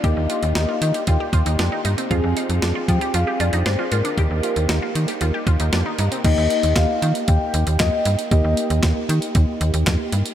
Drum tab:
CC |----------------|----------------|----------------|x---------------|
HH |x-xxx-xxx-xxx-xx|x-xxx-xxx-xxx-xx|x-xxx-xxx-xxx-xx|x-xxx-xxx-xxx-xx|
CP |----------------|----------------|----------------|----x-------x---|
SD |----o-------o---|----o-------o---|----o-------o---|----o-------o---|
BD |o-------o-o-----|o-----o---------|o---------o-----|o---o---o---o---|

CC |----------------|
HH |x-xxx-xxx-xxx-xx|
CP |----x-------x---|
SD |----o-------o---|
BD |o---o---o---o---|